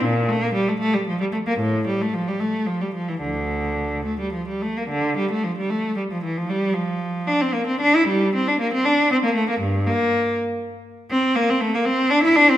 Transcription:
X:1
M:6/8
L:1/16
Q:3/8=77
K:Dm
V:1 name="Cello"
B,,2 A, B, G, A, A, G, F, G, A, B, | A,,2 G, A, F, G, A,2 F, G, F, E, | [D,,D,]6 A, G, F, G, A, B, | D,2 G, A, F, G, A,2 G, F, E, F, |
G,2 F,4 D C B, C D E | G,2 C D B, C D2 C B, A, B, | G,,2 B,4 z6 | C2 B, C A, B, C2 D E D C |]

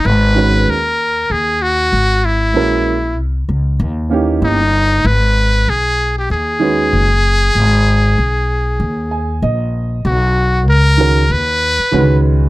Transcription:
X:1
M:4/4
L:1/16
Q:"Swing 16ths" 1/4=96
K:G#m
V:1 name="Muted trumpet"
B4 A4 G2 F4 E2- | E4 z8 D4 | B4 G3 =G ^G8- | G12 z4 |
F4 A4 B6 z2 |]
V:2 name="Upright piano"
z2 [D,G,CFB]2 z12 | [E,G,CFA]2 z8 [E,A,CD=G]2 z4 | z8 z2 [D,G,CFB]2 z4 | z8 z2 g2 d4 |
z6 [D,G,CFA]2 z4 [=D,^D,G,CFB]4 |]
V:3 name="Upright bass" clef=bass
G,,,4 D,,4 D,,4 G,,,4 | A,,,4 ^B,,,2 C,,2 D,,4 =G,,,4 | G,,,4 B,,,4 D,,4 F,,,4 | G,,,4 B,,,4 D,,4 A,,,4 |
B,,,4 C,,4 D,,3 z C,,4 |]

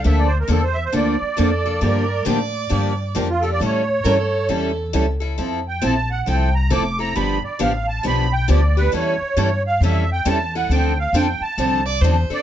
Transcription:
X:1
M:4/4
L:1/16
Q:"Swing" 1/4=135
K:Aphr
V:1 name="Accordion"
e d c B A c e c d8- | d4 z8 z F A d | ^c8 z8 | z2 g2 a2 ^f2 g2 b2 d'2 b2 |
=b2 d2 f2 a2 b2 g2 d2 =B2 | ^c6 f2 e2 g2 a2 ^f2 | g2 f2 g2 a4 z4 d2 |]
V:2 name="Violin"
z12 A4 | B4 d8 z4 | z4 B A8 z3 | z16 |
z16 | z16 | z8 z2 d2 c4 |]
V:3 name="Steel-string acoustic guitar"
[D,F,B,DA]2 z2 [D,F,B,DA]2 z2 [D,F,B,DA]2 z2 [D,F,B,DA]2 [B,DA]2 | [D,F,B,DG]2 z2 [D,F,B,DG]2 z2 [D,F,B,DG]2 z2 [D,F,B,DG]2 [B,DG]2 | [E,G,^CEA]2 z2 [E,G,CEA]2 z2 [E,G,CEA]2 z2 [E,G,CEA]2 [CEA]2 | [F,CEA]2 z2 [F,CEA]2 z2 [F,CEA]2 z2 [F,CEA]2 [CEA]2 |
[D,F,=B,DG]2 z2 [D,F,B,DG]2 z2 [D,F,B,DG]2 z2 [D,F,B,DG]2 [B,DG]2 | [E,G,^CEA]2 z2 [E,G,CEA]2 z2 [E,G,CEA]2 z2 [E,G,CEA]2 [CEA]2 | [D,F,CDA]2 z2 [D,F,CDA]2 z2 [D,F,CDA]2 z2 [D,F,CDA]2 [CDA]2 |]
V:4 name="Steel-string acoustic guitar"
[D,F,B,DA]2 z2 [D,F,B,DA]2 z2 [D,F,B,DA]2 z2 [D,F,B,DA]2 z2 | [D,F,B,DG]2 z2 [D,F,B,DG]2 z2 [D,F,B,DG]2 z2 [D,F,B,DG]2 z2 | [E,G,^CEA]2 z2 [E,G,CEA]2 z2 [E,G,CEA]2 z2 [E,G,CEA]2 z2 | [F,CEA]2 z2 [F,CEA]2 z2 [F,CEA]2 z2 [F,CEA]2 z2 |
[D,F,=B,DG]2 z2 [D,F,B,DG]2 z2 [D,F,B,DG]2 z2 [D,F,B,DG]2 z2 | [E,G,^CEA]2 z2 [E,G,CEA]2 z2 [E,G,CEA]2 z2 [E,G,CEA]2 z2 | [D,F,CDA]2 z2 [D,F,CDA]2 z2 [D,F,CDA]2 z2 [D,F,CDA]2 z2 |]
V:5 name="Upright bass" clef=bass
D,,4 E,,4 D,,2 z2 F,,4 | G,,4 A,,4 G,,4 F,,4 | A,,4 G,,4 E,,4 ^C,,4 | F,,4 B,,,4 C,,4 F,,,4 |
G,,,2 z2 A,,,4 =B,,,4 D,,4 | E,,2 z2 G,,4 F,,4 E,,4 | D,,4 F,,2 z2 C,,4 E,,2 z2 |]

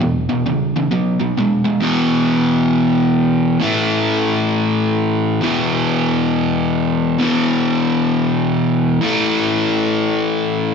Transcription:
X:1
M:4/4
L:1/8
Q:"Swing" 1/4=134
K:Alyd
V:1 name="Overdriven electric guitar" clef=bass
[E,,B,,] [E,,B,,] [E,,C,] [E,,C,] [B,,F,] [B,,F,] [B,,G,] [B,,G,] | [E,,B,,E,]8 | [A,,E,A,]8 | [E,,B,,E,]8 |
[E,,B,,E,]8 | [A,,E,A,]8 |]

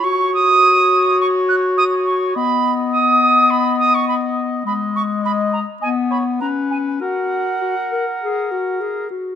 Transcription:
X:1
M:4/4
L:1/16
Q:1/4=104
K:F#
V:1 name="Flute"
c'2 d'6 c'2 f'2 d'2 c'2 | b3 z d'4 b2 d' c' b2 z2 | b2 c'2 b2 a2 g2 b2 a2 g2 | f12 z4 |]
V:2 name="Oboe"
c16 | d16 | d4 d4 d2 c2 B4 | A12- A2 z2 |]
V:3 name="Clarinet"
F16 | B,16 | G,8 B,4 C4 | F4 F2 A2 G2 F2 G2 F2 |]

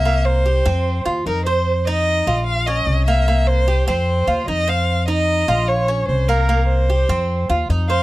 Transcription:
X:1
M:4/4
L:1/8
Q:1/4=149
K:Cphr
V:1 name="Violin"
=e c4 z B c- | c e3 f e2 =e- | =e c2 c3 _e f- | f e3 d2 c B- |
B c4 z2 f |]
V:2 name="Cuban tres"
B,2 G C2 F E c- | c E2 F2 D2 B, | B,2 G C2 F E c- | c E2 F2 D2 B, |
B,2 G C2 F E c |]
V:3 name="Upright bass" clef=bass
C,,3 F,,2 E,, F,,2- | F,,3 B,,,3 C,,2- | C,,3 F,,2 E,, F,,2- | F,,3 B,,,3 C,,2- |
C,,3 F,,2 E,, F,,2 |]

